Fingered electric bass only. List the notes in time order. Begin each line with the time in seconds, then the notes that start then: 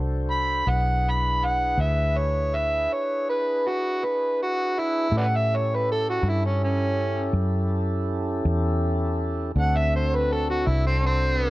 Already playing: C2
0.67 B1
1.78 D2
5.12 A2
6.23 G2
7.33 F#2
8.45 E2
9.56 D2
10.67 C2